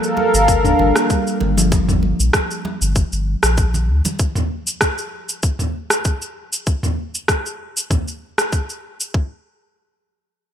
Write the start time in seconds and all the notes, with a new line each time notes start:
Already playing: G3 A#3 G4 A4 A#4 C5 D5 F5
0.04 shaker
0.17 high bongo, high conga
0.34 G1, shaker
0.48 kick, high bongo, shaker
0.64 D4, mid tom, shaker
0.79 G1, low conga
0.96 A#3, cross-stick, high bongo, shaker
1.10 G3, kick, shaker
1.27 shaker
1.40 G1, high conga, low conga
1.57 F3, high bongo, shaker
1.72 kick, high bongo, shaker
1.89 mid tom, shaker
2.03 high conga
2.20 A#1, shaker
2.33 kick, cross-stick, shaker
2.51 shaker
2.65 high bongo, high conga
2.82 G1, shaker
2.96 kick, shaker
3.13 G1, shaker
3.43 A#1, cross-stick, shaker
3.58 kick, shaker
3.74 low conga, shaker
3.88 D2
4.05 high conga, low conga, shaker
4.19 kick, shaker
4.36 mid tom, shaker
4.67 shaker
4.81 kick, cross-stick, shaker
4.98 shaker
5.29 shaker
5.43 kick, shaker
5.59 mid tom, shaker
5.90 cross-stick, shaker
6.05 kick, shaker
6.22 shaker
6.53 shaker
6.67 kick, shaker
6.83 mid tom, shaker
7.15 shaker
7.28 kick, cross-stick, shaker
7.46 shaker
7.77 shaker
7.90 kick, mid tom, shaker
8.08 shaker
8.38 cross-stick, shaker
8.53 kick, shaker
8.70 shaker
9.00 shaker
9.14 kick